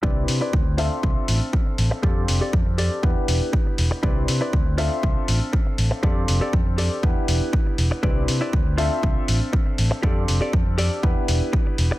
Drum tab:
HH |-o-o-o-o|-o-o-o-o|-o-o-o-o|-o-o-o-o|
BD |o-o-o-o-|o-o-o-o-|o-o-o-o-|o-o-o-o-|

HH |-o-o-o-o|-o-o-o-o|
BD |o-o-o-o-|o-o-o-o-|